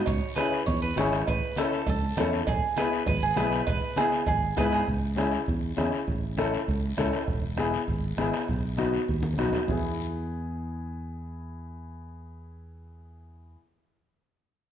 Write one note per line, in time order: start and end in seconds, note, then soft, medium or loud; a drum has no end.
0.06 0.19 C#2 loud
0.06 0.35 C#5 loud
0.06 bombo low medium
0.06 cowbell loud
0.06 long guiro medium
0.36 0.58 C#4 medium
0.36 0.58 E4 medium
0.36 0.58 G#4 medium
0.36 0.66 B4 medium
0.36 bombo rim medium
0.36 cowbell medium
0.36 high conga medium
0.36 short guiro medium
0.53 short guiro medium
0.66 0.91 E2 loud
0.66 0.82 C#5 medium
0.66 bombo low medium
0.66 cowbell medium
0.66 high conga soft
0.66 low conga medium
0.66 long guiro medium
0.82 0.97 B4 medium
0.96 1.21 G#1 medium
0.96 1.18 C#4 medium
0.96 1.19 E4 medium
0.96 1.19 G#4 medium
0.96 1.28 C#5 medium
0.96 bombo rim medium
0.96 cowbell medium
0.96 high conga medium
0.96 low timbale medium
0.96 short guiro medium
1.12 bombo rim medium
1.12 short guiro medium
1.27 1.39 A1 loud
1.27 1.56 B4 medium
1.27 bombo low medium
1.27 cowbell loud
1.27 high conga soft
1.27 long guiro medium
1.56 1.79 C#4 medium
1.56 1.79 E4 medium
1.56 1.88 A4 medium
1.56 1.79 A4 medium
1.56 bombo rim medium
1.56 cowbell medium
1.56 high conga medium
1.56 short guiro medium
1.72 short guiro medium
1.87 2.11 C#2 loud
1.87 2.47 A4 medium
1.87 bombo low medium
1.87 cowbell medium
1.87 high conga soft
1.87 low conga medium
1.87 long guiro medium
2.17 2.41 E2 medium
2.17 2.39 C#4 medium
2.17 2.39 E4 medium
2.17 2.39 A4 medium
2.17 bombo rim medium
2.17 cowbell medium
2.17 high conga medium
2.17 low conga medium
2.17 low timbale medium
2.17 short guiro medium
2.33 short guiro medium
2.47 2.59 E1 loud
2.47 2.78 G#4 medium
2.47 bombo low medium
2.47 cowbell loud
2.47 high conga soft
2.47 low conga medium
2.47 long guiro medium
2.76 2.98 B3 medium
2.76 2.98 E4 medium
2.76 2.99 G#4 medium
2.76 3.05 B4 medium
2.76 bombo rim medium
2.76 cowbell medium
2.76 high conga medium
2.76 short guiro medium
2.93 short guiro medium
3.06 3.32 G#1 loud
3.06 3.23 B4 medium
3.06 bombo low medium
3.06 cowbell medium
3.06 high conga soft
3.06 low conga medium
3.06 long guiro medium
3.23 3.38 G#4 medium
3.36 3.61 B1 medium
3.36 3.58 B3 medium
3.36 3.58 E4 medium
3.36 3.58 G#4 medium
3.36 3.65 B4 medium
3.36 bombo rim medium
3.36 cowbell medium
3.36 high conga medium
3.36 low timbale medium
3.36 short guiro medium
3.52 bombo rim medium
3.52 short guiro medium
3.66 3.79 E1 loud
3.66 3.98 B4 medium
3.66 bombo low medium
3.66 cowbell loud
3.66 high conga soft
3.66 long guiro medium
3.96 4.18 B3 medium
3.96 4.18 E4 medium
3.96 4.25 G#4 medium
3.96 4.18 G#4 medium
3.96 bombo rim medium
3.96 cowbell medium
3.96 high conga medium
3.96 short guiro medium
4.12 short guiro medium
4.26 4.51 G#1 loud
4.26 4.58 G#4 medium
4.26 bombo low medium
4.26 cowbell medium
4.26 high conga soft
4.26 low conga medium
4.26 long guiro medium
4.56 4.82 G#2 medium
4.56 4.78 B3 medium
4.56 4.78 E4 medium
4.56 4.78 G#4 medium
4.56 4.73 B4 medium
4.56 bombo low medium
4.56 bombo rim medium
4.56 cowbell medium
4.56 high conga medium
4.56 short guiro medium
4.72 4.87 G#4 medium
4.72 bombo rim medium
4.72 short guiro medium
4.86 5.36 C#2 medium
4.86 bombo low medium
4.86 high conga soft
4.86 long guiro medium
5.16 5.38 C#4 medium
5.16 5.38 E4 medium
5.16 5.38 G#4 medium
5.16 bombo rim medium
5.16 high conga medium
5.16 short guiro medium
5.32 short guiro medium
5.46 5.72 E2 medium
5.46 bombo low medium
5.46 high conga soft
5.46 long guiro medium
5.77 5.90 E2 medium
5.77 5.98 C#4 medium
5.77 5.98 E4 medium
5.77 5.98 G#4 medium
5.77 bombo rim medium
5.77 high conga medium
5.77 short guiro medium
5.92 short guiro medium
6.07 6.56 A1 medium
6.07 bombo low medium
6.07 high conga soft
6.07 long guiro medium
6.37 6.58 C#4 medium
6.37 6.59 E4 medium
6.37 6.59 A4 medium
6.37 bombo rim medium
6.37 high conga medium
6.37 short guiro medium
6.54 short guiro medium
6.68 6.92 C#2 medium
6.68 bombo low medium
6.68 high conga soft
6.68 long guiro medium
6.97 7.10 C#2 medium
6.97 7.18 C#4 medium
6.97 7.19 E4 medium
6.97 7.19 A4 medium
6.97 bombo low medium
6.97 bombo rim medium
6.97 high conga medium
6.97 short guiro medium
7.13 bombo rim medium
7.13 short guiro medium
7.28 7.76 E1 medium
7.28 bombo low medium
7.28 high conga soft
7.28 long guiro medium
7.57 7.79 B3 medium
7.57 7.79 E4 medium
7.57 7.79 G#4 medium
7.57 bombo rim medium
7.57 high conga medium
7.57 short guiro medium
7.74 short guiro medium
7.88 8.12 G#1 medium
7.88 bombo low medium
7.88 high conga soft
7.88 long guiro medium
8.17 8.30 G#1 medium
8.17 8.39 B3 medium
8.17 8.39 E4 medium
8.17 8.39 G#4 medium
8.17 bombo rim medium
8.17 high conga medium
8.17 short guiro medium
8.34 bombo rim medium
8.34 short guiro medium
8.48 8.97 B1 medium
8.48 bombo low medium
8.48 high conga soft
8.48 long guiro medium
8.77 8.99 B3 medium
8.77 8.99 D#4 medium
8.77 8.99 F#4 medium
8.77 bombo rim medium
8.77 high conga medium
8.77 short guiro medium
8.94 short guiro medium
9.08 9.33 D#2 medium
9.08 bombo low medium
9.08 high conga soft
9.08 long guiro medium
9.23 high conga medium
9.34 9.50 B1 medium
9.34 high conga medium
9.38 9.59 B3 medium
9.38 9.59 D#4 medium
9.38 9.60 F#4 medium
9.38 bombo rim medium
9.38 short guiro medium
9.43 low conga medium
9.53 bombo rim medium
9.53 low conga medium
9.53 short guiro medium
9.67 13.55 E2 medium
9.67 13.54 B3 medium
9.67 13.55 E4 medium
9.67 13.56 G#4 medium
9.67 bombo low medium
9.67 low conga medium
9.67 long guiro medium